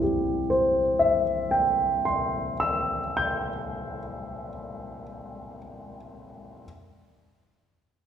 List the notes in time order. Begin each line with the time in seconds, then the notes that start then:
Already playing: G2 C3 E3 G3 C4 E4
0.02 G4
0.50 C5
0.99 E5
1.51 G5
2.05 C6
2.60 E6
3.17 G6